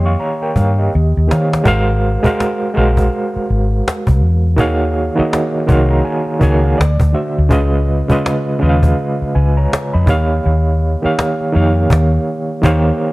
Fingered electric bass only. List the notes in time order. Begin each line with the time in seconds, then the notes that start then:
Already playing: F2
0.57 G2
0.95 D#2
1.17 D#2
1.32 D#3
1.67 G#1
2.25 muted fingered electric bass stroke
2.77 A#1
3.36 muted fingered electric bass stroke
3.50 G#1
4.08 C2
4.24 E2
4.59 D#2
5.19 muted fingered electric bass stroke
5.70 C2
6.42 C#2
6.80 D2
7.01 D2
7.38 D2
7.52 C#2
8.11 muted fingered electric bass stroke
8.63 D#2
9.22 muted fingered electric bass stroke
9.36 C#2
9.95 F2
10.08 D#2
10.46 D#2
11.05 muted fingered electric bass stroke
11.56 F2
11.91 D#2
12.65 D#2